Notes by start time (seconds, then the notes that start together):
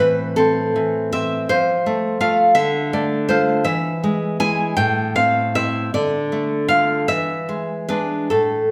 Already playing: A2 C4
0.00 E3 B4
0.36 C4 A4
0.76 E3
1.12 C4 E5
1.49 F3 C5
1.86 A3
2.20 A3 F4 F5
2.55 D3 E5
2.93 A3 D5
3.29 A3 F4 C5
3.64 E3 E5
4.04 G#3
4.40 G#3 E4 G#5
4.77 A2 G5
5.16 C4 F5
5.55 C4 E4 E5
5.94 D3 D5
6.32 A3
6.68 A3 F4 F5
7.08 E3 E5
7.49 G#3
7.89 G#3 D4 B4
8.30 A2 A4